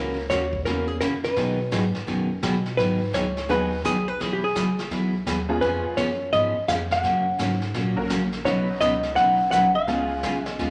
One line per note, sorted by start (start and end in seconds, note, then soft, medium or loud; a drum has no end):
0.00 0.29 C#2 medium
0.00 0.16 C#3 medium
0.00 0.16 E3 medium
0.00 0.16 A#3 medium
0.00 0.16 C#4 medium
0.00 0.17 F#4 medium
0.00 0.28 A#4 medium
0.30 0.64 D#2 medium
0.30 0.41 C#3 medium
0.30 0.42 E3 medium
0.30 0.42 A#3 medium
0.30 0.42 C#4 medium
0.30 0.42 F#4 medium
0.30 0.63 C#5 loud
0.30 kick soft
0.30 snare medium
0.30 hi-hat pedal medium
0.53 kick medium
0.65 1.00 E2 medium
0.65 0.87 C#3 medium
0.65 0.88 E3 medium
0.65 0.88 A#3 medium
0.65 0.88 C#4 medium
0.65 0.88 F#4 medium
0.65 0.88 A#4 medium
0.65 brush sweep soft
0.65 kick soft
0.65 snare soft
0.88 1.00 G#4 medium
1.01 1.35 F#2 loud
1.01 1.12 C#3 medium
1.01 1.12 E3 medium
1.01 1.13 A#3 medium
1.01 1.13 C#4 medium
1.01 1.13 F#4 medium
1.01 1.07 A#4 loud
1.01 kick soft
1.01 snare medium
1.01 hi-hat pedal medium
1.24 2.39 B4 medium
1.24 snare soft
1.36 1.71 B2 medium
1.36 1.58 B2 medium
1.36 1.58 D#3 medium
1.36 1.58 F#3 medium
1.36 1.58 B3 medium
1.36 1.59 D#4 medium
1.36 1.59 G#4 medium
1.36 brush sweep medium
1.36 kick soft
1.36 snare soft
1.71 1.93 G#2 medium
1.71 1.83 B2 medium
1.71 1.83 D#3 medium
1.71 1.83 F#3 medium
1.71 1.83 B3 medium
1.71 1.83 D#4 medium
1.71 1.83 G#4 medium
1.71 kick soft
1.71 snare medium
1.71 hi-hat pedal medium
1.94 2.01 G#2 soft
1.94 snare soft
2.07 2.41 F#2 medium
2.07 2.29 B2 medium
2.07 2.29 D#3 medium
2.07 2.29 F#3 medium
2.07 2.29 B3 medium
2.07 2.29 D#4 medium
2.07 2.29 G#4 medium
2.07 brush sweep soft
2.07 kick soft
2.07 snare soft
2.42 2.77 B2 loud
2.42 2.54 B2 medium
2.42 2.54 D#3 medium
2.42 2.54 F#3 medium
2.42 2.54 B3 medium
2.42 2.55 D#4 medium
2.42 2.54 G#4 medium
2.42 kick soft
2.42 snare medium
2.42 hi-hat pedal medium
2.66 snare soft
2.77 3.12 G#2 medium
2.77 3.00 D#3 medium
2.77 3.00 F#3 medium
2.77 3.00 B3 medium
2.77 3.00 D#4 medium
2.77 3.00 G#4 medium
2.77 3.14 B4 medium
2.77 brush sweep medium
2.77 kick soft
2.77 snare soft
3.13 3.48 C#2 loud
3.13 3.25 D#3 medium
3.13 3.25 F#3 medium
3.13 3.25 B3 medium
3.13 3.25 D#4 medium
3.13 3.25 G#4 medium
3.13 3.50 C#5 loud
3.13 kick soft
3.13 snare medium
3.13 hi-hat pedal medium
3.37 snare soft
3.49 3.83 D#2 medium
3.49 3.70 D#3 medium
3.49 3.71 F#3 medium
3.49 3.69 G#3 medium
3.49 3.71 B3 medium
3.49 3.69 B3 medium
3.49 3.71 D#4 medium
3.49 3.70 D#4 medium
3.49 3.70 F#4 medium
3.49 3.71 G#4 medium
3.49 3.70 G#4 medium
3.49 3.85 B4 loud
3.49 brush sweep soft
3.49 kick soft
3.49 snare soft
3.84 4.19 B1 medium
3.84 3.96 D#3 medium
3.84 3.96 F#3 medium
3.84 3.96 B3 medium
3.84 3.96 D#4 medium
3.84 3.96 G#4 medium
3.84 4.08 G#4 loud
3.84 kick soft
3.84 snare medium
3.84 hi-hat pedal medium
4.08 4.21 B4 medium
4.20 4.54 E1 medium
4.20 4.42 E3 medium
4.20 4.42 F#3 medium
4.20 4.42 B3 medium
4.20 4.42 E4 medium
4.20 4.34 G#4 medium
4.20 4.42 G#4 medium
4.20 brush sweep medium
4.20 kick soft
4.20 snare soft
4.33 4.42 G4 medium
4.44 5.10 G#4 medium
4.55 4.90 F#1 medium
4.55 4.67 E3 medium
4.55 4.67 F#3 medium
4.55 4.67 B3 medium
4.55 4.67 E4 medium
4.55 4.67 G#4 medium
4.55 kick soft
4.55 snare medium
4.55 hi-hat pedal medium
4.79 snare soft
4.91 5.25 B1 loud
4.91 5.13 E3 medium
4.91 5.13 F#3 medium
4.91 5.13 B3 medium
4.91 5.13 E4 medium
4.91 5.13 G#4 medium
4.91 brush sweep soft
4.91 kick soft
4.91 snare soft
5.26 5.61 D#2 medium
5.26 5.38 E3 medium
5.26 5.38 F#3 medium
5.26 5.38 B3 medium
5.26 5.38 E4 medium
5.26 5.39 G#4 medium
5.26 kick soft
5.26 snare medium
5.26 hi-hat pedal medium
5.49 5.95 G#3 medium
5.49 5.95 B3 medium
5.49 5.95 C#4 medium
5.49 5.95 F4 medium
5.49 5.95 G#4 medium
5.61 5.83 F2 medium
5.61 5.83 F3 medium
5.61 5.84 B3 medium
5.61 5.84 C#4 medium
5.61 5.84 G#4 medium
5.61 5.94 B4 medium
5.61 brush sweep soft
5.61 kick soft
5.61 snare soft
5.84 5.90 F2 soft
5.97 6.31 F#2 medium
5.97 6.09 F3 medium
5.97 6.09 B3 medium
5.97 6.09 C#4 medium
5.97 6.09 G#4 medium
5.97 6.34 C#5 medium
5.97 kick soft
5.97 snare medium
5.97 hi-hat pedal medium
6.32 6.54 G#2 medium
6.32 6.54 F3 medium
6.32 6.55 B3 medium
6.32 6.55 C#4 medium
6.32 6.55 G#4 medium
6.32 6.68 D#5 loud
6.32 brush sweep soft
6.32 kick soft
6.32 snare soft
6.55 6.61 G#2 soft
6.68 7.02 F2 loud
6.68 6.80 F3 medium
6.68 6.80 B3 medium
6.68 6.80 C#4 medium
6.68 6.80 G#4 medium
6.68 6.74 F5 loud
6.68 kick soft
6.68 snare medium
6.68 hi-hat pedal medium
6.91 7.94 F#5 loud
6.91 snare medium
7.03 7.38 F#2 medium
7.03 7.25 C#3 medium
7.03 7.25 F#3 medium
7.03 7.25 A#3 medium
7.03 7.25 C#4 medium
7.03 7.25 F#4 medium
7.03 brush sweep soft
7.03 kick soft
7.03 snare soft
7.39 7.74 G#2 medium
7.39 7.50 C#3 medium
7.39 7.50 F#3 medium
7.39 7.51 A#3 medium
7.39 7.51 C#4 medium
7.39 7.51 F#4 medium
7.39 kick soft
7.39 snare medium
7.39 hi-hat pedal medium
7.62 snare soft
7.74 7.96 A#2 medium
7.74 7.96 C#3 medium
7.74 7.96 F#3 medium
7.74 7.96 A#3 medium
7.74 7.96 C#4 medium
7.74 7.97 F#4 medium
7.74 brush sweep soft
7.74 kick soft
7.74 snare soft
7.96 8.03 A#2 soft
7.96 8.08 F#3 medium
7.96 8.09 A#3 medium
7.96 8.09 C#4 medium
7.96 8.09 F#4 medium
7.96 8.09 A#4 medium
7.96 kick soft
8.10 8.44 A#1 medium
8.10 8.21 C#3 medium
8.10 8.22 F#3 medium
8.10 8.22 A#3 medium
8.10 8.22 C#4 medium
8.10 8.22 F#4 medium
8.10 kick soft
8.10 snare medium
8.10 hi-hat pedal medium
8.32 snare soft
8.45 8.80 B1 medium
8.45 8.67 B2 medium
8.45 8.67 C#3 medium
8.45 9.44 F#3 medium
8.45 8.67 F#3 medium
8.45 9.44 B3 soft
8.45 8.68 B3 medium
8.45 9.44 C#4 medium
8.45 9.44 D#4 medium
8.45 8.67 D#4 medium
8.45 9.44 F#4 medium
8.45 8.68 B4 medium
8.45 8.82 C#5 medium
8.45 brush sweep soft
8.45 kick soft
8.45 snare soft
8.80 9.15 C#2 medium
8.80 8.92 B2 medium
8.80 8.93 C#3 medium
8.80 8.93 F#3 medium
8.80 8.93 B3 medium
8.80 8.93 D#4 medium
8.80 8.93 B4 medium
8.80 9.14 D#5 loud
8.80 kick soft
8.80 snare medium
8.80 hi-hat pedal medium
9.03 snare soft
9.16 9.51 B1 loud
9.16 9.38 B2 medium
9.16 9.38 C#3 medium
9.16 9.38 F#3 medium
9.16 9.39 B3 medium
9.16 9.39 D#4 medium
9.16 9.39 B4 medium
9.16 9.50 F#5 loud
9.16 brush sweep medium
9.16 kick soft
9.16 snare soft
9.51 9.86 A#1 medium
9.51 9.64 B2 medium
9.51 9.64 C#3 medium
9.51 9.64 F#3 medium
9.51 9.64 B3 medium
9.51 9.64 D#4 medium
9.51 9.64 B4 medium
9.51 9.75 F#5 loud
9.51 kick soft
9.51 snare medium
9.51 hi-hat pedal medium
9.75 10.46 F5 medium
9.87 10.22 C#2 loud
9.87 10.09 C#3 medium
9.87 10.70 G#3 medium
9.87 10.09 G#3 medium
9.87 10.70 B3 medium
9.87 10.10 B3 medium
9.87 10.70 C#4 medium
9.87 10.10 F4 medium
9.87 10.70 F4 medium
9.87 10.70 G#4 medium
9.87 10.10 G#4 medium
9.87 brush sweep soft
9.87 kick soft
9.87 snare soft
10.23 10.58 B1 loud
10.23 10.35 C#3 medium
10.23 10.35 G#3 medium
10.23 10.35 B3 medium
10.23 10.35 F4 medium
10.23 10.35 G#4 medium
10.23 kick soft
10.23 snare medium
10.23 hi-hat pedal medium
10.46 10.70 D#5 medium
10.46 snare soft
10.59 10.70 D#2 medium
10.59 10.70 C#3 medium
10.59 10.70 G#3 medium
10.59 10.70 B3 medium
10.59 10.70 F4 medium
10.59 10.70 G#4 medium
10.59 brush sweep soft
10.59 kick soft
10.59 snare soft